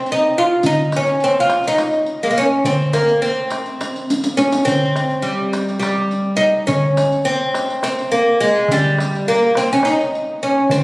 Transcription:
0.06 riq
0.12 D#4
0.38 F4
0.63 D#4, riq, darbuka dum
0.92 riq, darbuka tek
0.96 C#4
1.07 riq
1.20 C4, riq, darbuka ka
1.40 F4
1.50 riq, darbuka tek
1.64 D#4, riq, darbuka ka
1.78 riq, darbuka tek
1.93 riq, darbuka ka
2.06 riq
2.23 G#3 A#3
2.31 A#3
2.38 C#4
2.64 C4, riq, darbuka dum
2.93 A#3, riq, darbuka tek
3.08 riq, darbuka ka
3.22 C4, riq, darbuka ka
3.50 riq, darbuka tek
3.66 riq, darbuka ka
3.81 riq, darbuka tek
3.96 riq, darbuka ka
4.10 riq, darbuka ka
4.24 riq
4.37 C#4, riq
4.52 riq
4.65 C4, riq, darbuka dum
4.96 riq, darbuka tek
5.11 riq
5.22 G3, riq, darbuka ka
5.53 riq, darbuka tek
5.69 riq, darbuka ka
5.79 G3, riq, darbuka tek
5.97 darbuka ka
6.11 riq
6.37 D#4
6.67 C#4, riq, darbuka dum
6.97 riq, darbuka tek
7.12 riq
7.25 C4, riq
7.54 riq, darbuka tek
7.69 riq, darbuka ka
7.83 C4, riq, darbuka tek
7.98 riq, darbuka ka
8.12 A#3, riq
8.41 G#3
8.68 G3, riq, darbuka dum
8.98 riq, darbuka tek
9.15 riq
9.27 A#3, riq, darbuka ka
9.55 C4, riq, darbuka tek
9.70 C#4, riq, darbuka ka
9.83 D#4, riq, darbuka tek
9.97 riq, darbuka ka
10.15 riq
10.43 C#4
10.70 C4, riq, darbuka dum

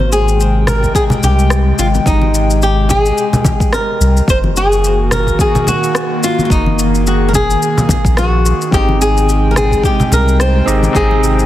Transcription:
Already playing: G#1 C3 G#3 C5 G5
0.12 G#4, shaker
0.28 shaker
0.40 shaker
0.67 A#4, cross-stick, low conga, shaker
0.83 kick, shaker
0.95 G#4, kick, shaker
1.10 low conga, shaker
1.22 C2 G4, low conga, shaker
1.39 shaker
1.50 cross-stick, shaker
1.78 G#1 F4, shaker
1.95 high conga, shaker
2.06 G#1 D#4, kick, shaker
2.22 high conga
2.34 shaker
2.50 shaker
2.62 G4, shaker
2.89 G#4, kick, low conga, shaker
3.06 shaker
3.18 shaker
3.33 low conga, shaker
3.44 kick, high conga, low conga, shaker
3.60 kick, shaker
3.73 A#4, cross-stick, shaker
4.00 C2, shaker
4.17 shaker
4.28 F#1 D#3 A#3 F#4 C5, kick, shaker
4.44 high conga
4.57 G#4, shaker
4.72 shaker
4.84 shaker
5.11 A#4, cross-stick, low conga, shaker
5.27 kick, shaker
5.39 G#4, kick, shaker
5.55 low conga, shaker
5.67 F#4, low conga, shaker
5.83 shaker
5.95 cross-stick, shaker
6.24 F4, shaker
6.39 high conga, shaker
6.45 F4
6.50 F#1 D#4 G#4, kick, shaker
6.66 high conga
6.79 shaker
6.95 shaker
7.07 F#4, shaker
7.28 A#4
7.33 G#4, kick, low conga, shaker
7.50 shaker
7.62 shaker
7.78 low conga, shaker
7.89 kick, high conga, low conga, shaker
8.04 A#1, kick, shaker
8.17 F#4, cross-stick, shaker
8.46 shaker
8.61 shaker
8.71 G#1 C3 G#3 C4 D#4 G4 G#4 D#5 G5, kick, shaker
8.89 high conga
9.02 G#4, shaker
9.17 shaker
9.29 shaker
9.51 A#4
9.56 G#4, cross-stick, low conga, shaker
9.71 kick, shaker
9.83 G4, kick, shaker
10.00 low conga, shaker
10.12 C2 A#4, low conga, shaker
10.28 shaker
10.40 C5, cross-stick, shaker
10.66 G#1 C4 D#4 G4 G#4 D#5, shaker
10.83 high conga, shaker
10.93 G#1 C4 D#4 G#4 D#5 G5, kick, shaker
11.11 high conga
11.24 shaker
11.39 shaker

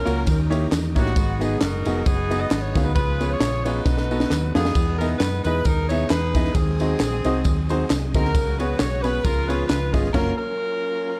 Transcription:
Already playing: F#3 A#3 C#4 F4 A#4
0.05 C#2 A#3 C#4 F4 F#4 A#4, ride, tambourine
0.25 D#2 D#3 A#3 C#4 D#4 G4, kick, ride, tambourine
0.50 A#3 D#4 E4 G4 C#5, ride, tambourine
0.72 E2, snare, clap, ride, tambourine
0.95 A1 A#3 B3 D#4 E4 F#4 G4 C#5, kick, snare, ride, tambourine
1.06 snare
1.16 G#1 G#2 F#3 G#3 B3 D#4 G#4, kick, ride, tambourine
1.41 B3 D#4 F#4 G#4 D#5, ride, tambourine
1.61 F#1 D#4 F#4 A#4, snare, clap, ride, tambourine
1.85 F1 B3 D#4 F#4 G#4 D#5, ride, tambourine
2.06 F#1 B3 D#4 G#4, kick, ride, tambourine
2.30 B3 D#4 F#4 G#4 D#5, ride, tambourine
2.41 D#5
2.51 G#1, snare, clap, ride, tambourine
2.62 C#5
2.75 D2 B3 D#4 F#4 G#4 F5, kick, snare, ride, tambourine
2.85 B4
2.95 C#2 C#3 F3 G#3 B3 C#4 F4 F#4 G#4 B4, kick, ride, tambourine
3.00 G#4
3.20 B3 C#4 F4 G#4 C#5, ride, tambourine
3.31 F4 G#4 C#5
3.40 A#1, snare, clap, ride, tambourine
3.64 B3 C#4 D#4 F4 F#4 G#4 B4 C#5, ride, tambourine
3.85 B1 B2 F#3 A3 B3 D#4 G#4, kick, snare, tambourine
3.90 A4
3.98 snare
4.11 B3 D#4 F#4 A4 D#5, tambourine
4.20 snare
4.30 D#2, snare, clap, tambourine
4.55 F2 B3 D#4 F#4 G#4 A4 F5, snare, tambourine
4.65 snare
4.75 E2 B2 E3 G#3 B3 D#4 G4, kick, tambourine, crash
4.80 G#4
4.99 B3 D#4 E4 G#4 A#4 D#5, ride, tambourine
5.19 F#2 B4, snare, clap, ride, tambourine
5.44 E2 B3 D#4 E4 G#4 B4 D#5, ride, tambourine
5.65 D#2 D#4 A#4, kick, ride, tambourine
5.89 B3 D#4 E4 G#4 C#5 E5, ride, tambourine
6.10 E2 D#4 G#4 B4, snare, clap, ride, tambourine
6.35 B3 D#4 E4 G#4 D#5, kick, snare, ride, tambourine
6.45 snare
6.54 D#2 D#3 F#3 G#3 C4 D#4 G#4, kick, ride, tambourine
6.80 C4 D#4 F#4 G#4 D#5, ride, tambourine
7.00 A#1, snare, clap, ride, tambourine
7.24 C2 C4 D#4 F#4 G#4 D#5, ride, tambourine
7.44 D#2, kick, ride, tambourine
7.69 C4 D#4 F#4 G#4 C5, ride, tambourine
7.90 C2, snare, clap, ride, tambourine
8.14 D2 C4 D#4 F#4 G#4 A#4 D#5, kick, snare, ride, tambourine
8.25 snare
8.35 C#2 C#3 F#3 G#3 B3 C#4 G#4, kick, ride, tambourine
8.59 B3 C#4 F#4 G#4 B4 C#5, ride, tambourine
8.79 B1 C#5, snare, clap, ride, tambourine
9.03 B3 C#4 F#4 G#4 B4 C#5, ride, tambourine
9.24 C#2 C#3 F3 G#3 B3 C#4 F4 G#4 A#4, kick, ride, tambourine
9.49 B3 C#4 F4 G#4 B4 C#5, ride, tambourine
9.68 C#2 B4, snare, clap, ride, tambourine
9.93 G1 B3 C#4 F4 G#4 D#5, kick, snare, ride, tambourine
10.04 snare
10.13 F#1 F#3 A#3 C#4 F4 F#4 A#4 C#5, kick, snare, crash
10.38 C#4 F4 A#4

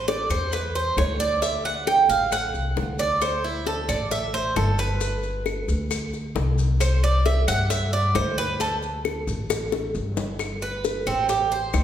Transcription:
Already playing: A1
0.08 D5, high bongo, maracas
0.30 E2 C5, claves, maracas
0.52 B4, high bongo, maracas
0.75 C5, maracas
0.97 D2 C#5, high bongo, low bongo, claves, maracas
1.20 D5, maracas
1.42 E5, high bongo, maracas
1.65 F#5, high bongo, maracas
1.87 G5, high bongo, claves, maracas
2.09 A1 F5, high bongo, maracas
2.32 F#5, high bongo, claves, maracas
2.54 C2, high bongo, maracas
2.76 D2, high bongo, low bongo, maracas
2.99 D5, maracas
3.21 C5, high bongo, claves, maracas
3.44 E4, maracas
3.66 A4, high bongo, maracas
3.89 A1 D5, claves, maracas
4.11 E5, high bongo, maracas
4.34 C5, maracas
4.56 G1 A4, high bongo, low bongo, claves, maracas
4.78 B4, maracas
5.01 high bongo, maracas
5.23 high bongo, maracas
5.46 high bongo, claves, maracas
5.68 D2, high bongo, maracas
5.91 high bongo, claves, maracas
6.13 high bongo, maracas
6.35 C2, high bongo, low bongo, maracas
6.58 maracas
6.80 C5, high bongo, claves, maracas
7.04 D5, maracas
7.26 E5, high bongo, maracas
7.48 G2 F#5, claves, maracas
7.70 E5, high bongo, maracas
7.93 D5, maracas
8.15 D2 C5, high bongo, low bongo, claves, maracas
8.38 B4, maracas
8.60 A4, high bongo, maracas
8.82 high bongo, maracas
9.05 high bongo, claves, maracas
9.27 A1, high bongo, maracas
9.50 high bongo, claves, maracas
9.72 high bongo, maracas
9.95 G1, maracas
10.17 low bongo, maracas
10.39 high bongo, claves, maracas
10.62 B4, maracas
10.84 high bongo, maracas
11.07 A1 C4, high bongo, claves, maracas
11.29 G4, high bongo, maracas
11.51 C5, high bongo, maracas
11.73 D2, high bongo, low bongo, claves, maracas

